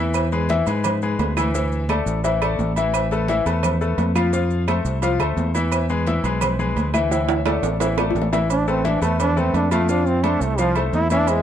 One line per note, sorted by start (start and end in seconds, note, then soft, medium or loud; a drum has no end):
0.00 0.61 E2 loud
0.00 0.25 E3 medium
0.00 0.26 E4 medium
0.00 0.26 E5 medium
0.14 cowbell loud
0.14 high conga soft
0.14 low agogo loud
0.14 claves medium
0.14 maracas medium
0.32 0.47 G#3 medium
0.32 0.47 G#4 medium
0.32 0.47 B4 medium
0.32 cowbell medium
0.32 high conga soft
0.32 maracas soft
0.49 0.64 E3 medium
0.49 0.64 E4 medium
0.49 0.64 E5 medium
0.49 cowbell medium
0.49 high conga loud
0.49 low agogo medium
0.49 maracas soft
0.67 1.16 G#2 loud
0.67 0.96 G#3 medium
0.67 0.96 G#4 medium
0.67 0.96 B4 medium
0.67 cowbell medium
0.67 low agogo medium
0.67 maracas medium
0.84 cowbell loud
0.84 high conga soft
0.84 low conga medium
0.84 low agogo loud
0.84 claves medium
0.84 maracas medium
1.02 1.31 G#3 medium
1.02 1.31 G#4 medium
1.02 1.31 B4 medium
1.02 high conga soft
1.02 maracas soft
1.19 2.01 D2 medium
1.19 cowbell medium
1.19 high conga medium
1.19 low timbale medium
1.19 low agogo medium
1.19 maracas soft
1.37 1.51 E3 medium
1.37 1.51 E4 medium
1.37 1.52 E5 medium
1.37 cowbell medium
1.37 high conga medium
1.37 low agogo loud
1.37 claves medium
1.37 maracas medium
1.54 1.83 E3 medium
1.54 1.83 E4 medium
1.54 1.84 E5 medium
1.54 cowbell loud
1.54 high conga soft
1.54 maracas medium
1.72 high conga soft
1.72 maracas soft
1.89 2.18 A3 medium
1.89 2.18 A4 medium
1.89 2.18 D5 medium
1.89 cowbell medium
1.89 high conga loud
1.89 low agogo loud
1.89 claves medium
1.89 maracas soft
2.06 2.55 A1 medium
2.06 cowbell medium
2.06 high conga soft
2.06 maracas medium
2.24 2.38 E3 medium
2.24 2.39 E4 medium
2.24 2.39 E5 medium
2.24 cowbell loud
2.24 high conga soft
2.24 low agogo medium
2.24 maracas loud
2.42 2.70 A3 medium
2.42 2.70 A4 medium
2.42 2.71 D5 medium
2.42 cowbell medium
2.42 high conga soft
2.42 low agogo loud
2.42 claves medium
2.42 maracas soft
2.59 3.40 A1 medium
2.59 cowbell medium
2.59 high conga medium
2.59 maracas soft
2.76 3.05 E3 medium
2.76 3.05 E4 medium
2.76 3.06 E5 medium
2.76 low agogo medium
2.76 maracas medium
2.94 cowbell loud
2.94 high conga soft
2.94 low agogo loud
2.94 claves medium
2.94 maracas medium
3.11 3.26 A3 medium
3.11 3.26 A4 medium
3.11 3.26 B4 medium
3.11 cowbell medium
3.11 high conga soft
3.11 maracas soft
3.28 3.43 E3 medium
3.28 3.43 E4 medium
3.28 3.44 E5 medium
3.28 cowbell medium
3.28 high conga loud
3.28 low agogo medium
3.28 maracas soft
3.46 3.95 E2 medium
3.46 3.75 A3 medium
3.46 3.75 A4 medium
3.46 3.75 B4 medium
3.46 cowbell medium
3.46 low agogo medium
3.46 maracas medium
3.63 cowbell loud
3.63 high conga soft
3.63 low conga medium
3.63 low agogo loud
3.63 claves medium
3.63 maracas loud
3.81 4.10 A3 medium
3.81 4.10 A4 medium
3.81 4.10 B4 medium
3.81 maracas soft
3.98 4.79 F2 medium
3.98 cowbell medium
3.98 high conga medium
3.98 low timbale medium
3.98 low agogo medium
3.98 maracas soft
4.15 4.30 F3 medium
4.15 4.30 F4 medium
4.15 4.30 F5 medium
4.15 cowbell medium
4.15 high conga loud
4.15 low agogo loud
4.15 claves medium
4.15 maracas medium
4.33 4.62 F3 medium
4.33 4.62 F4 medium
4.33 4.62 F5 medium
4.33 cowbell loud
4.33 maracas medium
4.50 high conga soft
4.50 maracas soft
4.68 4.96 A3 medium
4.68 4.97 A4 medium
4.68 4.97 C5 medium
4.68 cowbell medium
4.68 high conga loud
4.68 low agogo loud
4.68 claves medium
4.68 maracas soft
4.85 5.17 C2 loud
4.85 cowbell medium
4.85 high conga soft
4.85 maracas medium
5.02 5.17 F3 medium
5.02 5.17 F4 medium
5.02 5.17 F5 medium
5.02 cowbell loud
5.02 high conga soft
5.02 low agogo medium
5.02 maracas medium
5.19 5.36 D2 medium
5.19 5.48 A3 medium
5.19 5.49 A4 medium
5.19 5.49 C5 medium
5.19 cowbell medium
5.19 low agogo loud
5.19 claves medium
5.19 maracas soft
5.37 6.18 E2 medium
5.37 cowbell medium
5.37 high conga medium
5.37 maracas soft
5.55 5.83 E3 medium
5.55 5.84 E4 medium
5.55 5.84 E5 medium
5.55 high conga medium
5.55 low agogo medium
5.55 maracas medium
5.72 cowbell loud
5.72 high conga soft
5.72 low agogo medium
5.72 claves medium
5.72 maracas medium
5.89 6.04 G#3 medium
5.89 6.04 G#4 medium
5.89 6.04 B4 medium
5.89 cowbell medium
5.89 high conga soft
5.89 maracas soft
6.07 6.21 E3 medium
6.07 6.22 E4 medium
6.07 6.22 E5 medium
6.07 cowbell medium
6.07 high conga loud
6.07 low agogo medium
6.07 maracas soft
6.24 6.72 B1 medium
6.24 6.53 G#3 medium
6.24 6.53 G#4 medium
6.24 6.54 B4 medium
6.24 cowbell medium
6.24 low agogo medium
6.24 maracas medium
6.41 cowbell loud
6.41 high conga soft
6.41 low conga medium
6.41 low agogo loud
6.41 claves medium
6.41 maracas medium
6.59 6.88 G#3 medium
6.59 6.88 G#4 medium
6.59 6.88 B4 medium
6.59 high conga soft
6.59 low conga medium
6.59 maracas soft
6.76 7.57 D2 medium
6.76 cowbell medium
6.76 high conga medium
6.76 low agogo medium
6.76 maracas soft
6.94 7.08 E3 medium
6.94 7.08 E4 medium
6.94 7.08 E5 loud
6.94 cowbell medium
6.94 high conga medium
6.94 low agogo loud
6.94 claves medium
6.94 maracas medium
7.11 7.40 E3 medium
7.11 7.40 E4 medium
7.11 7.40 E5 medium
7.11 cowbell loud
7.11 high conga soft
7.11 high timbale medium
7.11 maracas medium
7.29 high timbale loud
7.29 maracas soft
7.46 7.74 A3 medium
7.46 7.75 A4 medium
7.46 7.75 D5 medium
7.46 cowbell medium
7.46 high conga medium
7.46 high timbale medium
7.46 low agogo loud
7.46 claves medium
7.46 maracas soft
7.63 8.11 A1 loud
7.63 cowbell medium
7.63 high conga soft
7.63 low timbale loud
7.63 maracas medium
7.80 7.95 E3 medium
7.80 7.95 E4 medium
7.80 7.95 E5 medium
7.80 cowbell loud
7.80 high conga soft
7.80 low timbale loud
7.80 low agogo loud
7.80 maracas medium
7.98 8.26 A3 medium
7.98 8.27 A4 medium
7.98 8.27 D5 medium
7.98 cowbell medium
7.98 high bongo medium
7.98 high conga soft
7.98 low timbale loud
7.98 low agogo loud
7.98 claves medium
7.98 maracas soft
8.10 high bongo loud
8.15 8.96 A1 loud
8.15 cowbell medium
8.15 high conga medium
8.15 low timbale medium
8.15 maracas soft
8.22 low bongo medium
8.32 8.47 E3 medium
8.32 8.47 E4 medium
8.32 8.47 E5 medium
8.32 low bongo loud
8.32 low timbale medium
8.32 low agogo medium
8.32 maracas medium
8.50 8.68 D4 loud
8.50 cowbell loud
8.50 high conga soft
8.50 low agogo loud
8.50 maracas medium
8.68 8.82 A3 medium
8.68 8.88 C4 medium
8.68 8.82 A4 medium
8.68 8.82 B4 medium
8.68 cowbell medium
8.68 high conga soft
8.68 maracas soft
8.84 8.99 E3 medium
8.84 9.02 D4 medium
8.84 8.99 E4 medium
8.84 8.99 E5 medium
8.84 cowbell medium
8.84 high conga loud
8.84 low agogo medium
8.84 maracas soft
9.02 9.50 E2 loud
9.02 9.30 A3 medium
9.02 9.20 A3 medium
9.02 9.30 A4 medium
9.02 9.31 B4 medium
9.02 cowbell medium
9.02 low agogo medium
9.02 maracas medium
9.20 9.40 D4 loud
9.20 cowbell loud
9.20 high conga soft
9.20 low conga medium
9.20 low agogo loud
9.20 maracas medium
9.36 9.65 A3 medium
9.36 9.54 C4 medium
9.36 9.65 A4 medium
9.36 9.65 B4 medium
9.36 high conga soft
9.36 low conga medium
9.36 maracas soft
9.54 10.35 F2 medium
9.54 9.72 D4 medium
9.54 cowbell medium
9.54 high conga medium
9.54 low timbale medium
9.54 low agogo medium
9.54 maracas soft
9.71 9.86 F3 loud
9.71 9.91 A3 loud
9.71 9.86 F4 medium
9.71 9.86 F5 medium
9.71 cowbell medium
9.71 high conga medium
9.71 low agogo loud
9.71 maracas medium
9.89 10.17 F3 medium
9.89 10.09 D4 medium
9.89 10.17 F4 medium
9.89 10.18 F5 medium
9.89 cowbell medium
9.89 high conga soft
9.89 maracas medium
10.06 10.26 C4 medium
10.06 high conga soft
10.06 maracas soft
10.23 10.52 A3 medium
10.23 10.43 D4 medium
10.23 10.52 A4 medium
10.23 10.52 C5 medium
10.23 cowbell medium
10.23 high conga loud
10.23 low agogo loud
10.23 maracas soft
10.41 10.89 C2 loud
10.41 10.61 A3 medium
10.41 cowbell medium
10.41 high conga soft
10.41 maracas medium
10.58 10.73 F3 medium
10.58 10.76 F3 loud
10.58 10.73 F4 medium
10.58 10.73 F5 medium
10.58 cowbell loud
10.58 high conga soft
10.58 low agogo medium
10.58 maracas medium
10.75 11.05 A3 medium
10.75 11.05 A4 medium
10.75 11.05 C5 medium
10.75 cowbell medium
10.75 high conga soft
10.75 low agogo loud
10.75 maracas soft
10.93 11.42 E2 medium
10.93 11.11 E4 loud
10.93 cowbell medium
10.93 high conga medium
10.93 maracas soft
11.10 11.39 E3 medium
11.10 11.31 D4 loud
11.10 11.40 E4 medium
11.10 11.40 E5 medium
11.10 high conga medium
11.10 low agogo medium
11.10 maracas medium
11.27 11.42 G#3 medium
11.27 cowbell loud
11.27 high conga soft
11.27 low agogo loud
11.27 maracas medium